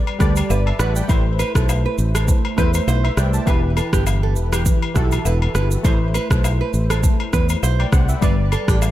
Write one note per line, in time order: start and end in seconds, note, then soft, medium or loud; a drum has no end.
0.00 0.19 G3 medium
0.00 0.20 G4 medium
0.00 0.20 B4 medium
0.00 0.21 D5 medium
0.07 high agogo medium
0.19 0.41 D2 medium
0.19 0.96 G3 medium
0.19 0.97 G4 medium
0.19 0.33 A4 medium
0.19 0.97 B4 medium
0.19 0.50 D5 medium
0.19 kick medium
0.19 cross-stick medium
0.19 shaker medium
0.36 high agogo medium
0.36 shaker medium
0.50 0.71 G1 medium
0.50 0.63 B4 medium
0.50 low woodblock medium
0.50 shaker medium
0.66 0.79 E5 medium
0.66 0.79 A5 medium
0.66 high agogo medium
0.79 1.00 A1 loud
0.79 0.92 B4 medium
0.79 0.95 F#5 medium
0.79 0.95 B5 medium
0.79 cross-stick medium
0.79 shaker medium
0.96 1.25 D5 medium
0.96 1.24 G5 medium
0.96 shaker medium
1.08 1.42 A1 loud
1.08 2.11 A3 medium
1.08 2.11 E4 medium
1.08 2.11 B4 medium
1.08 1.22 C5 medium
1.08 2.12 C5 loud
1.08 kick loud
1.08 high agogo medium
1.08 shaker medium
1.39 1.52 B4 medium
1.39 high agogo medium
1.39 shaker medium
1.55 1.85 B1 medium
1.55 1.66 A4 medium
1.55 kick medium
1.55 cross-stick loud
1.55 shaker medium
1.69 high agogo medium
1.69 low woodblock medium
1.69 shaker medium
1.86 1.95 B4 medium
1.98 2.31 A1 medium
1.98 shaker medium
2.15 2.25 A4 medium
2.15 cross-stick medium
2.15 high agogo medium
2.15 shaker medium
2.28 kick loud
2.28 shaker medium
2.45 high agogo medium
2.57 2.79 E2 medium
2.57 3.34 A3 medium
2.57 3.35 E4 medium
2.57 2.70 B4 medium
2.57 2.88 B4 medium
2.57 2.88 C5 medium
2.57 kick medium
2.57 cross-stick medium
2.57 shaker medium
2.74 high agogo medium
2.74 shaker medium
2.87 3.08 B1 medium
2.87 3.10 C5 medium
2.87 low woodblock medium
2.87 shaker medium
3.04 3.17 B4 medium
3.04 3.17 E5 medium
3.04 high agogo medium
3.17 3.38 C2 loud
3.17 3.33 D5 medium
3.17 3.33 G5 medium
3.17 cross-stick medium
3.17 shaker medium
3.34 3.62 E5 medium
3.34 3.62 A5 medium
3.34 shaker medium
3.46 3.79 E1 loud
3.46 4.48 E3 medium
3.46 4.49 E4 medium
3.46 4.49 G4 medium
3.46 3.60 B4 medium
3.46 4.50 B4 medium
3.46 kick loud
3.46 high agogo medium
3.46 shaker medium
3.77 3.89 A4 medium
3.77 high agogo medium
3.77 shaker medium
3.93 4.36 G1 medium
3.93 4.03 G4 medium
3.93 kick medium
3.93 cross-stick medium
3.93 shaker medium
4.07 high agogo medium
4.07 low woodblock medium
4.07 shaker medium
4.23 4.33 A4 medium
4.36 4.68 E1 medium
4.36 shaker medium
4.53 4.63 G4 medium
4.53 cross-stick medium
4.53 high agogo medium
4.53 shaker medium
4.66 kick loud
4.66 shaker medium
4.82 high agogo medium
4.94 5.16 B1 medium
4.94 5.72 E3 medium
4.94 5.72 E4 medium
4.94 5.03 F#4 medium
4.94 5.08 A4 medium
4.94 5.73 A4 medium
4.94 kick medium
4.94 cross-stick medium
4.94 shaker medium
5.02 5.76 G4 medium
5.11 high agogo medium
5.11 shaker medium
5.25 5.46 E1 medium
5.25 5.38 B4 medium
5.25 low woodblock medium
5.25 shaker medium
5.42 high agogo medium
5.55 5.76 G1 medium
5.55 5.68 B4 medium
5.55 cross-stick medium
5.55 shaker medium
5.71 shaker medium
5.83 6.17 A1 loud
5.83 6.86 A3 medium
5.83 6.86 E4 medium
5.83 6.87 B4 medium
5.83 5.97 C5 medium
5.83 6.87 C5 medium
5.83 kick loud
5.83 high agogo medium
5.83 shaker medium
6.14 6.27 B4 medium
6.14 high agogo medium
6.14 shaker medium
6.30 6.61 B1 medium
6.30 6.41 A4 medium
6.30 kick medium
6.30 cross-stick medium
6.30 shaker medium
6.44 high agogo medium
6.44 low woodblock medium
6.44 shaker medium
6.61 6.71 B4 medium
6.74 7.06 A1 medium
6.74 shaker medium
6.90 7.00 A4 medium
6.90 cross-stick medium
6.90 high agogo medium
6.90 shaker medium
7.03 kick loud
7.03 shaker medium
7.20 high agogo medium
7.33 7.54 E2 medium
7.33 7.46 B4 medium
7.33 kick medium
7.33 cross-stick medium
7.33 shaker medium
7.49 high agogo medium
7.49 shaker medium
7.63 7.84 B1 medium
7.63 7.86 C5 medium
7.63 low woodblock medium
7.63 shaker medium
7.79 7.92 D5 medium
7.79 7.92 G5 medium
7.79 high agogo medium
7.92 8.13 C2 loud
7.92 8.08 C5 medium
7.92 8.08 F#5 medium
7.92 kick loud
7.92 cross-stick medium
7.92 shaker medium
8.09 8.21 B4 medium
8.09 8.37 E5 medium
8.09 shaker medium
8.21 8.54 G1 loud
8.21 8.91 G3 medium
8.21 8.91 G4 medium
8.21 8.91 B4 medium
8.21 8.35 B4 medium
8.21 8.91 D5 loud
8.21 kick loud
8.21 high agogo medium
8.21 shaker medium
8.52 8.69 A4 medium
8.52 high agogo medium
8.52 shaker medium
8.68 8.91 A1 medium
8.68 8.79 G4 medium
8.68 kick medium
8.68 cross-stick medium
8.68 shaker medium
8.82 high agogo medium
8.82 low woodblock medium
8.82 shaker medium